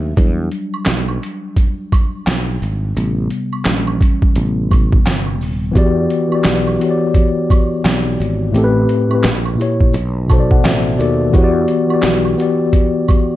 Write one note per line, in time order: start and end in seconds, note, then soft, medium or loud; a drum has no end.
0.00 0.13 D#2 medium
0.00 0.17 F#3 medium
0.00 0.19 A3 soft
0.00 0.19 D4 medium
0.00 0.19 E5 medium
0.17 0.48 E2 loud
0.17 1.18 F#3 medium
0.17 1.18 G3 medium
0.17 1.19 D4 medium
0.17 kick loud
0.17 closed hi-hat medium
0.17 maracas medium
0.52 closed hi-hat medium
0.52 maracas soft
0.74 high woodblock medium
0.85 1.18 B1 loud
0.85 snare loud
0.85 clap medium
0.85 maracas medium
0.90 closed hi-hat medium
1.08 high woodblock medium
1.23 closed hi-hat medium
1.23 maracas soft
1.56 kick medium
1.56 closed hi-hat medium
1.56 maracas medium
1.92 kick medium
1.92 closed hi-hat medium
1.92 high woodblock medium
1.92 maracas medium
2.26 2.57 B1 medium
2.26 snare loud
2.26 clap medium
2.26 closed hi-hat medium
2.26 maracas medium
2.62 2.92 G#1 medium
2.62 closed hi-hat soft
2.62 maracas medium
2.96 3.27 A1 loud
2.96 3.62 C3 medium
2.96 3.63 G3 medium
2.96 3.63 B3 medium
2.96 closed hi-hat medium
2.96 maracas medium
3.30 closed hi-hat medium
3.30 maracas soft
3.53 high woodblock medium
3.65 3.97 A#1 loud
3.65 4.32 E3 medium
3.65 4.32 G3 medium
3.65 4.33 C#4 medium
3.65 snare loud
3.65 clap medium
3.65 maracas medium
3.69 closed hi-hat medium
3.87 high woodblock medium
4.01 kick medium
4.01 closed hi-hat medium
4.01 maracas soft
4.22 kick medium
4.35 4.97 A1 loud
4.35 4.86 C3 medium
4.35 4.86 G3 soft
4.35 4.86 B3 medium
4.35 closed hi-hat medium
4.35 maracas medium
4.71 kick medium
4.71 closed hi-hat medium
4.71 high woodblock medium
4.71 maracas medium
4.92 kick loud
5.05 5.40 G1 medium
5.05 snare loud
5.05 clap medium
5.05 closed hi-hat medium
5.05 maracas medium
5.26 high woodblock soft
5.40 5.71 D#1 medium
5.40 open hi-hat soft
5.40 maracas medium
5.72 6.06 E2 loud
5.72 6.26 E3 loud
5.72 6.27 B3 loud
5.72 6.28 F#4 loud
5.72 kick loud
5.76 6.29 G4 loud
5.76 6.29 D5 loud
5.76 closed hi-hat medium
5.76 maracas medium
6.10 closed hi-hat medium
6.10 maracas soft
6.28 6.76 E3 medium
6.28 6.77 B3 medium
6.28 6.78 F#4 medium
6.28 high woodblock medium
6.33 6.78 G4 medium
6.33 6.79 D5 medium
6.44 6.76 B1 loud
6.44 snare loud
6.44 clap medium
6.44 maracas medium
6.49 closed hi-hat medium
6.67 high woodblock medium
6.78 8.12 E3 medium
6.78 8.13 B3 medium
6.78 8.14 F#4 medium
6.78 closed hi-hat medium
6.78 maracas soft
6.82 8.14 G4 medium
6.82 6.90 C#5 medium
6.90 8.18 D5 medium
7.14 kick medium
7.14 closed hi-hat medium
7.14 maracas medium
7.50 kick medium
7.50 closed hi-hat medium
7.50 high woodblock medium
7.50 maracas medium
7.85 8.15 B1 medium
7.85 snare loud
7.85 clap medium
7.85 closed hi-hat medium
7.85 maracas medium
8.20 8.50 G#1 medium
8.20 closed hi-hat medium
8.20 maracas medium
8.51 8.85 A1 loud
8.51 9.05 A2 loud
8.51 9.06 A3 loud
8.51 9.07 C4 loud
8.51 maracas medium
8.56 9.08 G4 loud
8.56 8.64 A4 loud
8.56 closed hi-hat medium
8.64 9.12 B4 loud
8.89 closed hi-hat medium
8.89 maracas soft
9.08 9.23 A2 medium
9.08 9.24 A3 medium
9.08 9.25 C4 medium
9.08 high woodblock medium
9.14 9.25 G4 medium
9.14 9.26 B4 medium
9.23 9.55 A#1 loud
9.23 snare loud
9.23 clap medium
9.23 maracas medium
9.28 closed hi-hat medium
9.45 high woodblock medium
9.55 9.92 A#2 medium
9.55 9.93 A#3 medium
9.55 9.94 E4 medium
9.60 9.94 G4 medium
9.60 9.95 C#5 medium
9.60 closed hi-hat medium
9.60 maracas soft
9.81 kick medium
9.93 10.55 B1 loud
9.93 closed hi-hat medium
9.93 maracas medium
10.27 10.94 B2 medium
10.27 10.95 B3 medium
10.27 10.96 F#4 medium
10.27 10.50 A5 medium
10.27 kick medium
10.27 high woodblock medium
10.27 maracas medium
10.31 10.97 A4 medium
10.31 10.39 C5 medium
10.31 closed hi-hat medium
10.40 10.97 D5 loud
10.51 10.63 F#5 medium
10.51 kick medium
10.64 10.95 A1 medium
10.64 10.96 E5 medium
10.64 snare loud
10.64 clap medium
10.64 closed hi-hat medium
10.64 maracas medium
10.96 11.30 D#2 medium
10.96 11.30 B2 medium
10.96 11.31 B3 medium
10.96 11.32 F#4 medium
10.96 11.01 D5 medium
11.00 11.33 A4 medium
11.00 11.34 D5 medium
11.00 closed hi-hat medium
11.00 maracas medium
11.30 11.64 E2 loud
11.30 11.85 E3 loud
11.30 11.85 B3 loud
11.30 11.86 F#4 loud
11.30 kick loud
11.30 maracas medium
11.35 11.87 G4 loud
11.35 11.43 C#5 medium
11.35 closed hi-hat medium
11.44 11.91 D5 loud
11.68 closed hi-hat medium
11.68 maracas soft
11.87 12.34 E3 medium
11.87 12.35 B3 medium
11.87 12.36 F#4 medium
11.87 high woodblock medium
11.92 12.37 G4 medium
11.92 12.38 D5 medium
12.02 12.34 B1 loud
12.02 snare loud
12.02 clap medium
12.02 maracas medium
12.07 closed hi-hat medium
12.25 high woodblock medium
12.36 13.36 E3 medium
12.36 13.36 B3 medium
12.36 13.36 F#4 medium
12.36 maracas soft
12.40 13.36 G4 medium
12.40 13.36 D5 medium
12.40 closed hi-hat medium
12.72 kick medium
12.72 closed hi-hat medium
12.72 maracas medium
13.08 kick medium
13.08 closed hi-hat medium
13.08 high woodblock medium
13.08 maracas medium